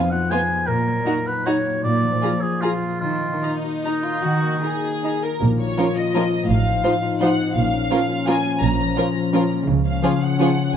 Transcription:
Already playing: F2 F3 B3 F5
0.11 F4 F#5
0.31 B3 F4 G#4 G#5
0.49 B3
0.67 A#2 A#4
0.87 F#3
1.06 A#3 D#4 F#4 A#5
1.27 D#4 B4
1.46 D#4 F#4 C#5 A#5
1.66 A#3
1.84 A#2 D5
2.03 F3
2.22 A#3 F4 G#4 A#5
2.41 F4 G#4
2.61 F4 G#4 A#5
2.83 A#3
3.01 D#3 F4
3.21 A#3
3.42 D#4 A#5
3.63 F#4
3.83 D#4 A#4 A#5
4.03 D#4 F4
4.22 D#3 F#4
4.43 A#3
4.63 D#4 G#4 A#5
4.84 F#4
5.04 D#4 A#4 A#5
5.25 D#4 A#4
5.42 A#1 A#2 F3 F4
5.59 A#3 C#5
5.78 F3 C#4 F4 A#4
5.96 F4 D#5
6.14 F3 C#4 F4 A#4
6.33 A#3
6.48 A1 A2 D#4 F5
6.67 C4
6.84 F3 D#4 F4 C5
7.03 F4
7.21 F3 D#4 F4 C5 F#5
7.39 C4
7.55 A#1 A#2 F3 C#4 F5
7.73 A#3
7.91 F3 C#4 F4 A#4
8.09 F4
8.27 F3 C#4 F4 A#4 G#5
8.44 A#3
8.62 A#1 A#2 A#5
8.79 F3
8.97 F3 C#4 F4 A#4
9.15 F4
9.33 F3 C#4 F4 A#4
9.51 A#3
9.68 C#2 C#3 F3 C#4
9.85 C#4 F5
10.03 F3 C#4 F4 G#4
10.21 G#4 F#5
10.39 F3 C#4 F4 G#4
10.57 C#4

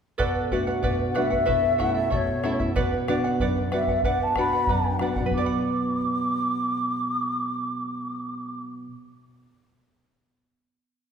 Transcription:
0.18 B2 F#4 A4 B4 D5 F#5, bombo low
0.51 A3 D4 F#4 B4 D5 F#5, bombo low
0.67 F#4 B4 F#5
0.83 B2 F#4 B4 D5 F#5, bombo low
1.09 F#5
1.14 A3 D4 F#4 B4 D5 E5 F#5, bombo rim
1.30 F#4 B4 F#5, bombo low
1.45 B2 E4 A4 B4 C#5 E5, bombo low
1.78 A3 C#4 E4 A4 C#5 E5 F#5, bombo rim, bombo low
1.94 E4 A4 E5
2.10 B2 E4 A4 C#5 D5 E5, bombo low
2.17 C#5
2.44 A3 C#4 E4 A4 C#5 E5, bombo rim
2.60 E4 A4 E5, bombo low
2.76 B2 B4 D5 F#5, bombo low
3.08 B3 D4 F#4 B4 D5 F#5, bombo rim
3.24 D5 F#5
3.40 F#2 B4 D5 F#5, bombo low
3.72 B3 D4 F#4 B4 D5 E5 F#5, bombo rim
3.87 D5 F#5, bombo low
4.04 B2 B4 D5 F#5, bombo low
4.23 A5
4.36 B3 D4 F#4 B4 D5 F#5 B5, bombo rim, bombo low
4.53 D5 F#5
4.67 F#2 B4 D5 F#5, bombo low
4.99 B3 D4 F#4 B4 D5 F#5, bombo rim
5.16 D5 F#5, bombo low
5.20 B2
5.25 F#3 B4
5.30 B3 D6, bombo low
5.35 F#4 D5
5.39 D5
5.45 F#5 B5

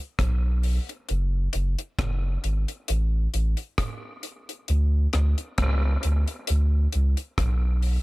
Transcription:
0.19 B1, kick, cross-stick, closed hi-hat
0.63 open hi-hat
0.89 closed hi-hat
1.09 F#1, closed hi-hat
1.53 F#1, closed hi-hat
1.79 closed hi-hat
1.99 F#1, kick, cross-stick, closed hi-hat
2.44 G#1, closed hi-hat
2.68 closed hi-hat
2.88 A1, closed hi-hat
3.34 A1, closed hi-hat
3.57 closed hi-hat
3.78 kick, cross-stick, closed hi-hat
4.23 closed hi-hat
4.49 closed hi-hat
4.68 D2, closed hi-hat
5.13 D2, cross-stick, closed hi-hat
5.38 closed hi-hat
5.58 C#2, kick, cross-stick, closed hi-hat
6.03 D2, closed hi-hat
6.28 closed hi-hat
6.47 D2, closed hi-hat
6.93 C#2, closed hi-hat
7.17 closed hi-hat
7.38 B1, kick, cross-stick, closed hi-hat
7.82 open hi-hat

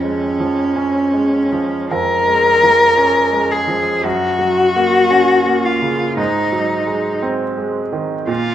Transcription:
Already playing: F2 C#4
0.04 G#3
0.40 F3
0.76 C#4
1.14 G#3
1.52 F3
1.91 F2 A#4
2.27 G#3
2.63 F3
2.98 C#4
3.32 G#3
3.51 G#4
3.68 F3
4.04 F#2 F#4
4.39 F#3
4.76 A#3
5.11 C#4
5.46 A#3
5.65 F4
5.82 C#3
6.17 G#2 D#4
6.52 F#3
6.87 G#3
7.22 C4
7.58 G#3
7.93 D#3
8.27 A#2 F4

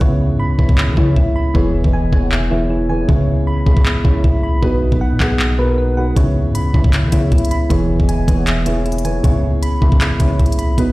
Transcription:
0.00 C#2 C#3 B3 E4 C#5, kick
0.30 G#2
0.40 B5
0.45 C#2
0.58 C#2 C#3 B3 E4 C#5 B5, kick
0.69 C#2, kick
0.78 clap
0.88 E3
0.97 C#3 B3 E4 C#5, kick
1.16 C#2 E4, kick
1.36 B5
1.54 E1 E3 B3 G#4 C#5, kick
1.84 E1 E3 B3 G#4 D#5, kick
1.93 G#5
2.12 E1 E3 B3 G#4 C#5 G#5, kick
2.23 F#5
2.32 E5, clap
2.50 E3 B3 E4 G#4 C#5
2.70 E4 C#5
2.89 E3 B3 G#4 C#5 G#5
3.08 C#2 C#3 B3 E4 C#5, kick
3.47 B5
3.66 C#2 C#3 B3 E4 G#4 B5, kick
3.77 C#2, kick
3.86 clap
4.04 C#2 C#3 B3 E4 C#5, kick
4.24 C#2 E4, kick
4.43 B5
4.54 B1
4.62 B1 B2 F#3 B3 D#4 B4, kick
4.91 B1 B2 F#3 D#4 B4, kick
5.01 F#5
5.11 B2
5.20 B1 B2 F#3 D#4 G#4 F#5, kick, clap
5.39 clap
5.58 B2 F#3 D#4 A#4 B4
5.78 B4
5.97 B2 F#3 D#4 B4 F#5
6.15 C#2 C#3 B3 E4 C#5, kick, closed hi-hat
6.46 G#2
6.55 B5, closed hi-hat
6.60 C#2
6.73 C#2 C#3 B3 E4 C#5 B5, kick
6.84 C#2, kick
6.93 clap, closed hi-hat
7.04 E3
7.12 C#3 B3 E4 C#5, kick, closed hi-hat
7.32 C#2 E4, kick, closed hi-hat
7.38 closed hi-hat
7.45 closed hi-hat
7.51 B5, closed hi-hat
7.69 E1 E3 B3 G#4 C#5, kick, closed hi-hat
8.00 E1 E3 B3 G#4 D#5, kick
8.09 G#5, closed hi-hat
8.27 E1 E3 B3 G#4 C#5 G#5, kick, closed hi-hat
8.38 F#5
8.47 E5, clap, closed hi-hat
8.66 E3 B3 E4 G#4 C#5, closed hi-hat
8.85 E4 C#5, closed hi-hat
8.92 closed hi-hat
8.98 closed hi-hat
9.05 E3 B3 G#4 C#5 G#5, closed hi-hat
9.23 C#2 C#3 B3 E4 C#5, kick, closed hi-hat
9.63 B5, closed hi-hat
9.81 C#2 C#3 B3 E4 G#4 B5, kick
9.92 C#2, kick
10.01 clap, closed hi-hat
10.19 C#2 C#3 B3 E4 C#5, kick, closed hi-hat
10.39 C#2 E4, kick, closed hi-hat
10.46 closed hi-hat
10.52 closed hi-hat
10.59 B5, closed hi-hat
10.69 B1
10.77 B1 B2 F#3 B3 D#4 B4, kick, closed hi-hat

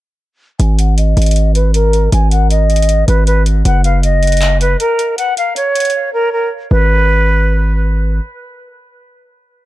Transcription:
0.60 G#1 G#5, closed hi-hat
0.78 F#5, closed hi-hat
0.98 D#5, closed hi-hat
1.17 G#1, closed hi-hat
1.22 closed hi-hat
1.26 closed hi-hat
1.31 closed hi-hat
1.36 closed hi-hat
1.55 B4, closed hi-hat
1.74 A#4, closed hi-hat
1.93 closed hi-hat
2.12 G#1 G#5, closed hi-hat
2.31 F#5, closed hi-hat
2.51 D#5, closed hi-hat
2.70 closed hi-hat
2.76 closed hi-hat
2.82 closed hi-hat
2.89 closed hi-hat
3.08 G#1 B4, closed hi-hat
3.26 B4, closed hi-hat
3.46 closed hi-hat
3.65 F#1 F#5, closed hi-hat
3.84 F5, closed hi-hat
4.03 D#5, closed hi-hat
4.23 closed hi-hat
4.27 closed hi-hat
4.32 closed hi-hat
4.37 closed hi-hat
4.42 clap, closed hi-hat
4.61 B4, closed hi-hat
4.80 A#4, closed hi-hat
4.99 closed hi-hat
5.18 F#5, closed hi-hat
5.37 F5, closed hi-hat
5.56 C#5, closed hi-hat
5.75 closed hi-hat
5.80 closed hi-hat
5.85 closed hi-hat
5.90 closed hi-hat
6.13 A#4
6.33 A#4
6.71 G#1 B4

